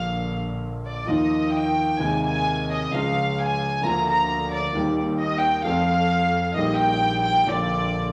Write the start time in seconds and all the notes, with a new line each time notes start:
Already playing: A#1 A#2 D3 F3 A#3 F4 F5
0.85 D5
1.07 D#2 D#3 F3 A#3 F4 D#5
1.55 G5
1.98 D#2 C3 D#3 G#3 G#5
2.02 D#4
2.23 G#5
2.71 D#5
2.91 C#2 C#3 F3 G#3 F4 F5
3.40 G#5
3.82 D2 D3 F3 A#3 A#5
3.86 F4
4.06 A#5
4.52 D5
4.73 D#2 D#3 G3 A#3 G4
5.19 D#5
5.42 G5
5.63 F2 F3 A3 C4 A4 F5
6.54 A#1 A#2 D#3 G3 A#3 D#5
6.58 G4
6.76 G5
7.24 G5
7.45 A#1 A#2 D3 F3 A#3 F4 D5